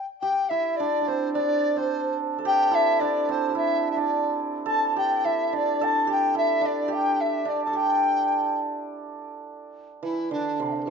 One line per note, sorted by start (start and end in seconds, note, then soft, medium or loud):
0.21 2.45 G4 medium
0.21 0.51 G5 medium
0.49 2.71 E4 medium
0.49 0.78 E5 medium
0.76 1.01 D4 medium
0.76 1.09 D5 medium
1.01 1.35 D4 soft
1.08 1.76 C4 medium
1.08 1.33 C5 medium
1.33 3.01 D4 medium
1.33 1.79 D5 medium
1.76 3.28 C4 medium
1.76 2.18 C5 medium
2.38 4.65 A4 medium
2.45 3.49 G4 medium
2.45 2.76 G5 loud
2.71 3.55 E4 medium
2.71 3.01 E5 medium
3.00 3.96 D4 medium
3.00 3.32 D5 medium
3.29 7.29 C4 medium
3.29 3.56 C5 medium
3.49 4.96 G4 soft
3.55 5.25 E4 medium
3.55 3.89 E5 medium
3.91 4.01 E5 soft
3.96 5.53 D4 medium
3.96 4.41 D5 medium
4.66 5.81 A4 medium
4.66 4.94 A5 medium
4.96 6.07 G4 medium
4.96 5.26 G5 medium
5.25 6.34 E4 medium
5.25 5.57 E5 medium
5.53 6.61 D4 medium
5.53 5.85 D5 medium
5.81 7.67 A4 medium
5.81 6.09 A5 medium
6.07 6.88 G4 medium
6.12 6.35 G5 medium
6.35 9.82 E4 medium
6.35 6.67 E5 medium
6.61 7.45 D4 medium
6.66 6.95 D5 medium
6.88 7.73 G4 medium
6.93 7.22 G5 medium
7.21 7.50 E5 medium
7.45 10.90 D4 medium
7.45 7.64 D5 medium
7.65 10.59 A4 medium
7.65 7.78 A5 medium
7.73 10.87 G4 medium
7.73 8.59 G5 medium
10.03 10.37 E3 medium
10.03 10.29 E4 medium
10.31 10.66 D3 medium
10.31 10.62 D4 medium
10.60 10.90 C3 medium
10.60 10.67 A5 soft
10.60 10.63 C6 soft
10.68 10.74 E5 soft
10.68 10.70 G5 soft
10.75 10.80 C5 soft
10.75 10.77 D5 soft
10.80 10.90 G4 soft
10.80 10.84 A4 soft